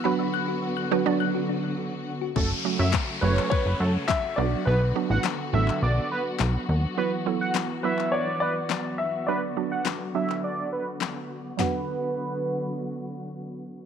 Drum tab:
CP |----------------|----x--x----x---|----x--x----x---|----x--x----x---|
SD |----------------|----o-------o---|----o-------o---|----o-------o---|
FT |----------------|----------------|----------------|----------------|
BD |----------------|o---o---o---o---|----------------|----------------|

CP |----x--x----x---|----------------|
SD |----o-------o---|o---------------|
FT |----------------|o---------------|
BD |----------------|----------------|